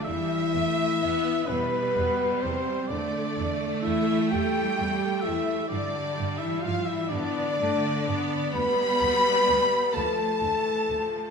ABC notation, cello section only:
X:1
M:6/8
L:1/16
Q:3/8=43
K:Ddor
V:1 name="Cello section" clef=bass
E,6 B,,4 C,2 | D,4 E,2 G,4 E,2 | D,3 E, F, E, D,6 | B,6 A,6 |]